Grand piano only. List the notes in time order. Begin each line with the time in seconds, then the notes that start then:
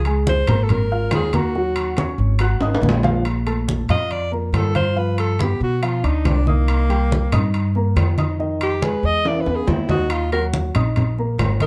0.06 G#3 G#4 G#5
0.49 A#3 A#4 A#5
0.92 F4 F5 F6
1.34 A#3 A#4 A#5
1.55 F#3 F#4 F#5
1.98 C#4 C#5 C#6
2.40 F#4 F#5 F#6
2.62 D#4 D#5 D#6
3.04 F3 F4 F5
3.46 A3 A4 A5
3.90 F4 F5 F6
4.32 A#3 A#4 A#5
4.75 F4 F5 F6
4.96 F3 F4 F5
5.39 B3 B4 B5
5.82 F3 F4 F5
6.03 D4 D5 D6
6.47 D#4 D#5 D#6
6.89 G3 G4 G5
7.33 D#4 D#5 D#6
7.75 A#3 A#4 A#5
8.18 D#4 D#5 D#6
8.39 D#3 D#4 D#5
8.81 G#3 G#4 G#5
9.25 E3 E4 E5
9.47 B3 B4 B5
9.90 D#4 D#5 D#6
10.33 F#3 F#4 F#5
10.75 D#4 D#5 D#6
11.19 A#3 A#4 A#5
11.61 D#4 D#5 D#6